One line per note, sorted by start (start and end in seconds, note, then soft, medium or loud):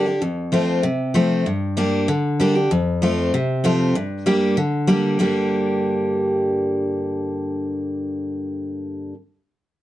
0.00 0.18 D3 medium
0.06 0.21 D4 soft
0.06 0.21 G4 medium
0.22 0.81 F2 medium
0.52 0.82 F3 medium
0.52 0.82 A3 medium
0.52 0.83 C4 medium
0.52 0.83 F4 loud
0.83 1.43 C3 medium
1.14 1.44 F3 medium
1.14 1.44 A3 loud
1.14 1.45 C4 medium
1.14 1.45 F4 loud
1.46 2.05 G2 medium
1.77 2.07 G3 medium
1.77 2.07 A#3 medium
1.77 2.07 D4 loud
1.77 2.07 G4 loud
2.08 2.68 D3 medium
2.40 2.55 G3 medium
2.40 2.55 A#3 medium
2.40 2.55 D4 medium
2.40 2.54 G4 loud
2.55 2.71 D4 soft
2.55 2.70 G4 medium
2.71 3.30 F2 medium
3.02 3.32 F3 loud
3.02 3.32 A3 medium
3.02 3.32 C4 medium
3.02 3.32 F4 loud
3.34 3.93 C3 medium
3.64 3.94 F3 medium
3.64 3.94 A3 loud
3.64 3.94 C4 medium
3.64 3.94 F4 loud
3.95 4.55 G2 medium
4.26 4.56 G3 medium
4.26 4.56 A#3 loud
4.26 4.56 D4 loud
4.26 4.56 G4 loud
4.57 5.17 D3 loud
4.87 5.18 G3 medium
4.87 5.18 A#3 medium
4.87 5.18 D4 medium
4.87 5.19 G4 medium
5.19 9.13 G2 medium
5.19 9.13 D3 medium
5.19 9.14 G3 medium
5.19 9.14 A#3 medium
5.19 9.15 D4 medium
5.19 9.15 G4 medium